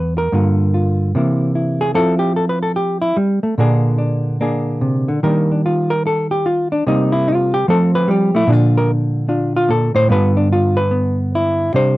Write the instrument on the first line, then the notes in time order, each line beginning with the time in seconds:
hollow-body jazz guitar
Already playing: E2 G3 D4 B4
0.18 A#4
0.32 G2 D3 A#3 F4
0.74 F4
1.15 C3 E3 A#3 E4
1.55 E4
1.81 G#4
1.95 F3 C4 E4 A4
2.19 G4
2.36 A4
2.49 B4
2.63 A4
2.76 G4
3.02 E4
3.17 G3
3.43 A3
3.58 A#2 D3 A#3 D4 G#4
3.98 D4
4.41 A#3 D4 G#4
4.81 C3
5.08 D3
5.23 D#3 G3 A#3 D4 A#4
5.52 D4
5.66 F4
5.90 A#4
6.07 A4
6.31 G4
6.46 F4
6.72 D4
6.87 C3 G3 A#3 D#4
7.12 E4
7.28 F4
7.54 G4
7.68 F3 A3 C4 A4
7.95 B4
8.08 G3 G4
8.35 A3 E4
8.47 A#2 D3 D4
8.52 F4
8.77 A#4
9.29 D4 F4
9.56 F4
9.69 A#2 A4
9.95 A2 C5
10.09 G2 D3 B3 F4 B4
10.37 D4
10.53 F4
10.77 B4
10.91 B3
11.35 E4
11.74 C3 G3 D4 G4 C5